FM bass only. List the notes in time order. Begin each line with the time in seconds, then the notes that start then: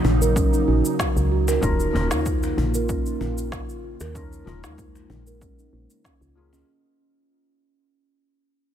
0.05 A#1
0.68 A#1
1.16 C#2
1.62 D#1
1.94 D#1
2.11 D#2
2.58 A#1
3.21 A#1
4.01 D#2
4.47 D#1
4.64 D#2
5.10 A#1
5.73 A#1
6.21 C#2